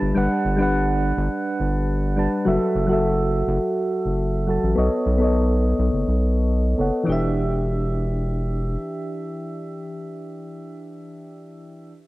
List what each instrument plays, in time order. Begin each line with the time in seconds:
Already playing: synth keys G3 D4 B4 A5
0.02 analog synth bass G1
0.15 analog synth bass G1, synth keys G3 D4 B4 F#5
0.45 analog synth bass G1
0.56 synth keys G3 D4
0.61 synth keys B4 F#5
1.17 analog synth bass G1
1.60 analog synth bass G1
2.16 synth keys G3 D4 B4 A5
2.45 analog synth bass F#1, synth keys F#3 F#4 A4 E5
2.75 analog synth bass F#1
2.87 synth keys F#3 F#4
2.91 synth keys A4 E5
3.48 analog synth bass F#1
4.05 analog synth bass F#1
4.47 synth keys F#3 F#4 A4 A5
4.63 analog synth bass A1
4.75 analog synth bass B1, synth keys B3 A4 C#5 D#5
5.06 analog synth bass B1
5.18 synth keys B3 A4 C#5
5.24 synth keys D#5
5.79 analog synth bass B1
5.93 analog synth bass F#1
6.08 analog synth bass B1
6.78 analog synth bass F#1, synth keys B3 A4 C#5 F#5
7.03 synth keys E3 D4
7.08 analog synth bass E1, synth keys G4
7.12 synth keys E5